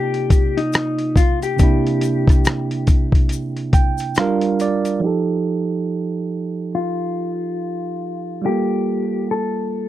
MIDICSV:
0, 0, Header, 1, 4, 480
1, 0, Start_track
1, 0, Tempo, 857143
1, 890, Time_signature, 4, 2, 24, 8
1, 5537, End_track
2, 0, Start_track
2, 0, Title_t, "Clean electric guitar"
2, 0, Program_c, 0, 27
2, 0, Note_on_c, 0, 67, 106
2, 321, Note_on_c, 0, 63, 90
2, 331, Note_off_c, 0, 67, 0
2, 654, Note_on_c, 0, 65, 85
2, 662, Note_off_c, 0, 63, 0
2, 799, Note_off_c, 0, 65, 0
2, 802, Note_on_c, 0, 67, 77
2, 2217, Note_off_c, 0, 67, 0
2, 3779, Note_on_c, 0, 65, 71
2, 4734, Note_off_c, 0, 65, 0
2, 4736, Note_on_c, 0, 67, 80
2, 5212, Note_off_c, 0, 67, 0
2, 5215, Note_on_c, 0, 69, 82
2, 5537, Note_off_c, 0, 69, 0
2, 5537, End_track
3, 0, Start_track
3, 0, Title_t, "Tine electric piano"
3, 0, Program_c, 1, 4
3, 0, Control_c, 1, 64, 127
3, 0, Note_on_c, 1, 48, 75
3, 0, Note_on_c, 1, 58, 73
3, 0, Note_on_c, 1, 63, 67
3, 0, Note_on_c, 1, 65, 85
3, 0, Note_on_c, 1, 74, 60
3, 861, Note_off_c, 1, 48, 0
3, 866, Note_off_c, 1, 58, 0
3, 871, Note_off_c, 1, 74, 0
3, 876, Note_off_c, 1, 63, 0
3, 877, Note_on_c, 1, 48, 60
3, 881, Note_off_c, 1, 65, 0
3, 889, Note_on_c, 1, 58, 58
3, 896, Control_c, 1, 64, 0
3, 901, Note_on_c, 1, 62, 63
3, 914, Note_on_c, 1, 64, 73
3, 990, Control_c, 1, 64, 127
3, 2095, Note_on_c, 1, 79, 73
3, 2301, Note_off_c, 1, 48, 0
3, 2307, Note_off_c, 1, 58, 0
3, 2313, Note_off_c, 1, 62, 0
3, 2316, Note_off_c, 1, 79, 0
3, 2320, Note_off_c, 1, 64, 0
3, 2337, Note_on_c, 1, 55, 78
3, 2338, Control_c, 1, 64, 0
3, 2344, Note_on_c, 1, 62, 65
3, 2347, Note_on_c, 1, 77, 72
3, 2351, Note_on_c, 1, 65, 70
3, 2357, Note_on_c, 1, 70, 83
3, 2435, Control_c, 1, 64, 127
3, 2563, Note_off_c, 1, 77, 0
3, 2584, Note_on_c, 1, 74, 76
3, 2799, Note_on_c, 1, 53, 71
3, 2801, Note_off_c, 1, 74, 0
3, 2811, Note_on_c, 1, 63, 65
3, 2814, Note_off_c, 1, 55, 0
3, 2817, Note_off_c, 1, 62, 0
3, 2818, Control_c, 1, 64, 0
3, 2821, Note_off_c, 1, 65, 0
3, 2823, Note_on_c, 1, 67, 68
3, 2824, Note_off_c, 1, 70, 0
3, 2836, Note_on_c, 1, 69, 79
3, 2920, Control_c, 1, 64, 127
3, 4702, Note_off_c, 1, 53, 0
3, 4708, Note_off_c, 1, 63, 0
3, 4713, Note_on_c, 1, 55, 55
3, 4714, Note_off_c, 1, 67, 0
3, 4721, Note_off_c, 1, 69, 0
3, 4725, Note_on_c, 1, 65, 48
3, 4738, Control_c, 1, 64, 0
3, 4738, Note_on_c, 1, 69, 50
3, 4751, Note_on_c, 1, 58, 61
3, 4820, Control_c, 1, 64, 127
3, 5537, Note_off_c, 1, 55, 0
3, 5537, Note_off_c, 1, 58, 0
3, 5537, Note_off_c, 1, 65, 0
3, 5537, Note_off_c, 1, 69, 0
3, 5537, End_track
4, 0, Start_track
4, 0, Title_t, "Drums"
4, 78, Note_on_c, 9, 42, 47
4, 134, Note_off_c, 9, 42, 0
4, 169, Note_on_c, 9, 36, 94
4, 170, Note_on_c, 9, 42, 68
4, 178, Note_on_c, 9, 82, 54
4, 225, Note_off_c, 9, 36, 0
4, 226, Note_off_c, 9, 42, 0
4, 234, Note_off_c, 9, 82, 0
4, 323, Note_on_c, 9, 42, 45
4, 379, Note_off_c, 9, 42, 0
4, 407, Note_on_c, 9, 82, 60
4, 413, Note_on_c, 9, 42, 70
4, 421, Note_on_c, 9, 37, 106
4, 463, Note_off_c, 9, 82, 0
4, 469, Note_off_c, 9, 42, 0
4, 477, Note_off_c, 9, 37, 0
4, 552, Note_on_c, 9, 42, 50
4, 608, Note_off_c, 9, 42, 0
4, 648, Note_on_c, 9, 36, 94
4, 655, Note_on_c, 9, 82, 50
4, 656, Note_on_c, 9, 42, 68
4, 704, Note_off_c, 9, 36, 0
4, 711, Note_off_c, 9, 82, 0
4, 712, Note_off_c, 9, 42, 0
4, 798, Note_on_c, 9, 42, 49
4, 798, Note_on_c, 9, 82, 50
4, 854, Note_off_c, 9, 42, 0
4, 854, Note_off_c, 9, 82, 0
4, 889, Note_on_c, 9, 82, 72
4, 893, Note_on_c, 9, 36, 101
4, 893, Note_on_c, 9, 42, 77
4, 945, Note_off_c, 9, 82, 0
4, 949, Note_off_c, 9, 36, 0
4, 949, Note_off_c, 9, 42, 0
4, 1045, Note_on_c, 9, 42, 43
4, 1101, Note_off_c, 9, 42, 0
4, 1128, Note_on_c, 9, 42, 77
4, 1137, Note_on_c, 9, 82, 47
4, 1184, Note_off_c, 9, 42, 0
4, 1193, Note_off_c, 9, 82, 0
4, 1274, Note_on_c, 9, 36, 103
4, 1283, Note_on_c, 9, 42, 48
4, 1288, Note_on_c, 9, 37, 29
4, 1293, Note_on_c, 9, 82, 48
4, 1330, Note_off_c, 9, 36, 0
4, 1339, Note_off_c, 9, 42, 0
4, 1344, Note_off_c, 9, 37, 0
4, 1349, Note_off_c, 9, 82, 0
4, 1372, Note_on_c, 9, 82, 72
4, 1373, Note_on_c, 9, 42, 75
4, 1384, Note_on_c, 9, 37, 115
4, 1428, Note_off_c, 9, 82, 0
4, 1429, Note_off_c, 9, 42, 0
4, 1440, Note_off_c, 9, 37, 0
4, 1518, Note_on_c, 9, 42, 50
4, 1574, Note_off_c, 9, 42, 0
4, 1608, Note_on_c, 9, 42, 65
4, 1609, Note_on_c, 9, 82, 52
4, 1610, Note_on_c, 9, 36, 95
4, 1664, Note_off_c, 9, 42, 0
4, 1665, Note_off_c, 9, 82, 0
4, 1666, Note_off_c, 9, 36, 0
4, 1749, Note_on_c, 9, 36, 89
4, 1764, Note_on_c, 9, 42, 50
4, 1805, Note_off_c, 9, 36, 0
4, 1820, Note_off_c, 9, 42, 0
4, 1843, Note_on_c, 9, 42, 68
4, 1862, Note_on_c, 9, 82, 74
4, 1899, Note_off_c, 9, 42, 0
4, 1918, Note_off_c, 9, 82, 0
4, 1997, Note_on_c, 9, 42, 43
4, 2053, Note_off_c, 9, 42, 0
4, 2088, Note_on_c, 9, 42, 67
4, 2089, Note_on_c, 9, 36, 88
4, 2096, Note_on_c, 9, 82, 48
4, 2144, Note_off_c, 9, 42, 0
4, 2145, Note_off_c, 9, 36, 0
4, 2152, Note_off_c, 9, 82, 0
4, 2228, Note_on_c, 9, 82, 55
4, 2240, Note_on_c, 9, 42, 47
4, 2284, Note_off_c, 9, 82, 0
4, 2296, Note_off_c, 9, 42, 0
4, 2324, Note_on_c, 9, 82, 63
4, 2331, Note_on_c, 9, 42, 75
4, 2339, Note_on_c, 9, 37, 99
4, 2380, Note_off_c, 9, 82, 0
4, 2387, Note_off_c, 9, 42, 0
4, 2395, Note_off_c, 9, 37, 0
4, 2472, Note_on_c, 9, 42, 53
4, 2528, Note_off_c, 9, 42, 0
4, 2574, Note_on_c, 9, 82, 48
4, 2575, Note_on_c, 9, 42, 73
4, 2630, Note_off_c, 9, 82, 0
4, 2631, Note_off_c, 9, 42, 0
4, 2716, Note_on_c, 9, 42, 54
4, 2717, Note_on_c, 9, 82, 50
4, 2772, Note_off_c, 9, 42, 0
4, 2773, Note_off_c, 9, 82, 0
4, 5537, End_track
0, 0, End_of_file